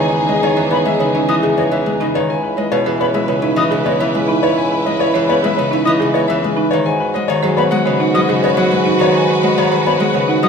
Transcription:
Already playing: E2 C#3 D#3 E3 G#3 B3 C#4 D#4 G#4
0.00 G#5
0.14 B4
0.29 G#3 C#5 D#5
0.43 D#3 B4 C#5
0.57 E3 G#4 C#5
0.70 B3 B4 C#5 B5
0.85 G#3 G#4 E5
1.00 C#3 B4 C#5
1.15 C#4 D#4 E5
1.28 E3 E4 D#5 D#6
1.43 C#3 G#4
1.57 B3 B4 C#5 D#5
1.71 E3 C#5 E5
1.86 G#3 G#4
2.00 C#3 D#4 B4 D#5
2.14 D#3 B4 C#5
2.29 C#2 E4 B4 G#5
2.43 B4
2.57 G#3 C#5 D#5
2.72 B2 B4 C#5
2.86 E3 G#4 C#5
3.00 B3 B4 C#5 B5
3.14 G#3 G#4 E5
3.28 C#3 B4 C#5
3.42 C#4 D#4 E5
3.56 E3 E4 D#5 D#6
3.71 C#3 G#4
3.85 B3 B4 C#5 D#5
4.00 E3 C#5 E5
4.15 G#3 G#4
4.28 D#4 B4
4.43 B4 C#5
4.58 G#5
4.72 B4
4.85 G#3 C#5 D#5
5.00 B4 C#5
5.14 E3 G#4 C#5
5.28 B3 B4 C#5 B5
5.42 G#3 G#4 E5
5.57 C#3 B4 C#5
5.71 C#4 D#4 E5
5.85 E3 E4 D#5 D#6
5.99 C#3 G#4
6.14 B3 B4 C#5 D#5
6.28 E3 C#5 E5
6.42 G#3 G#4
6.56 D#4 B4
6.71 D#3 B4 C#5
6.86 G#2 F#4 B4 G#5
7.00 B4
7.14 G#3 C#5 D#5
7.28 D#3 C#5
7.43 F#3 G#4 C#5
7.57 B3 B4 C#5 B5
7.71 G#3 G#4 F#5
7.85 C#3 B4 C#5
8.00 D#4 F#5
8.14 F#3 F#4 D#5 D#6
8.29 C#3 G#4
8.43 B3 B4 C#5 D#5
8.57 F#3 C#5 F#5
8.71 G#3 G#4
8.85 D#4 B4
9.00 D#3 B4 C#5
9.15 G#5
9.30 B4
9.43 G#3 C#5 D#5
9.58 D#3 C#5
9.72 F#3 G#4 C#5
9.86 B3 B4 C#5 B5
10.00 G#3 G#4 F#5
10.14 C#3 B4 C#5
10.28 D#4 F#5
10.43 F#3 F#4 D#5 D#6

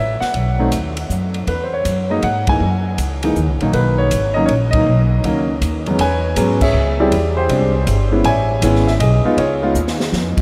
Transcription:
Already playing: A1 E5
0.20 F#5, muted upright bass stroke, snare
0.34 B1, kick, ride
0.59 F#3 A3 C4 D#4
0.71 D#2, kick, hi-hat pedal, ride
0.97 ride
1.09 F#2, kick, hi-hat pedal
1.34 ride
1.47 E2 B4, kick, ride
1.63 C5
1.73 C#5
1.85 F#2, kick, hi-hat pedal, ride
2.10 F#3 G#3 A#3 D#4 D#5
2.22 G#2 F#5, kick, ride
2.47 E3 G#3 A#3 D#4 G#5, kick, ride
2.60 F#2
2.98 C#2, kick, hi-hat pedal, ride
3.23 E3 G#3 A#3 D#4, ride
3.36 D#2, kick, hi-hat pedal
3.48 C#2
3.60 A#1 D#3 F#3 A#3 D#4, ride
3.73 B1 B4, kick, ride
3.98 C#5
4.11 G#1, kick, hi-hat pedal, ride
4.34 D#3 F#3 A#3 C#4 D#5
4.46 A#1 C#5, kick, ride
4.71 D#3 F#3 A#3 D#4 D#5, kick, ride
4.86 B1
5.24 C#2 D#3 F#3 A#3 C#4, kick, ride
5.61 D#2, kick, hi-hat pedal, ride
5.86 E2 F#3 G#3 B3 C#4, ride
5.98 E2 B4 C#5 G#5, kick, ride
6.36 G#2 F#3 G#3 B3 C#4, kick, hi-hat pedal, ride
6.61 G#4 C#5 E5, kick, crash
6.73 C#2
6.99 G3 G#3 C4 E4 G4 G#4 D5
7.11 E2, kick, ride
7.37 G4 G#4 C5
7.49 C2 G3 G#3 C4 D4, kick, ride
7.87 G1, kick, hi-hat pedal, ride
8.12 G#3 B3 C#4 E4
8.24 A1 C#5 E5 G#5, kick, ride
8.62 G#1 G#3 B3 C#4 E4, kick, hi-hat pedal, ride
8.75 snare
8.87 E5, snare
8.99 B1 G#4 D#5, kick, ride
9.24 G#3 B3 D#4 F4, muted upright bass stroke
9.37 C#2 F4 G#4 C#5, kick, ride
9.62 G#3 B3 D#4 F4
9.75 D#2, hi-hat pedal
9.87 snare
10.00 snare
10.12 F2, snare
10.37 muted upright bass stroke, kick, crash

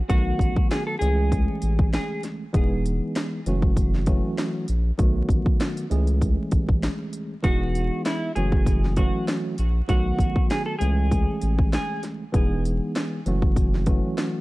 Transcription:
0.09 B1 D#3 F#3 A3 B3 F#4, kick, closed hi-hat
0.39 A1, kick, closed hi-hat
0.56 kick
0.71 G#4, snare, closed hi-hat
0.87 A4
0.99 C#2 E3 G#3 A3 C#4 G#4, closed hi-hat
1.32 kick, closed hi-hat
1.62 A1, closed hi-hat
1.79 kick
1.94 G#4, snare, closed hi-hat
2.23 snare, closed hi-hat
2.53 E1 E3 G#3 B3 D#4 G#4, kick, closed hi-hat
2.86 closed hi-hat
3.16 snare, closed hi-hat
3.46 F#1 E3 F#3 A3 C#4 F#4, closed hi-hat
3.62 kick
3.77 kick, closed hi-hat
3.95 snare
4.06 E3 F#3 A3 C#4 F#4, kick, closed hi-hat
4.38 snare, closed hi-hat
4.68 A#1, closed hi-hat
4.98 B1 D#3 F#3 A3 B3 F#4, kick, closed hi-hat
5.29 A1, kick, closed hi-hat
5.46 kick
5.60 snare, closed hi-hat
5.77 closed hi-hat
5.90 C#2 E3 G#3 A3 C#4 G#4, closed hi-hat
6.07 closed hi-hat
6.21 kick, closed hi-hat
6.51 A1, kick, closed hi-hat
6.69 kick
6.83 snare, closed hi-hat
7.13 closed hi-hat
7.43 E1 E3 G#3 B3 D#4 F#4 G#4, kick, closed hi-hat
7.75 closed hi-hat
8.05 E4, snare, closed hi-hat
8.35 F#1 E3 F#3 A3 C#4 F#4 G#4, closed hi-hat
8.52 kick
8.66 kick, closed hi-hat
8.84 snare
8.96 E3 F#3 A3 C#4 F#4, kick, closed hi-hat
9.28 snare, closed hi-hat
9.58 A#1, closed hi-hat
9.88 B1 D#3 F#3 A3 B3 F#4, kick, closed hi-hat
10.19 A1, kick, closed hi-hat
10.36 kick
10.50 G#4, snare, closed hi-hat
10.66 A4
10.79 C#2 E3 G#3 A3 C#4 G#4, closed hi-hat
11.11 kick, closed hi-hat
11.41 A1, closed hi-hat
11.59 kick
11.73 G#4, snare, closed hi-hat
12.03 snare, closed hi-hat
12.33 E1 E3 G#3 B3 D#4 G#4, kick, closed hi-hat
12.65 closed hi-hat
12.95 snare, closed hi-hat
13.26 F#1 E3 F#3 A3 C#4 F#4, closed hi-hat
13.42 kick
13.56 kick, closed hi-hat
13.74 snare
13.86 E3 F#3 A3 C#4 F#4, kick, closed hi-hat
14.18 snare, closed hi-hat

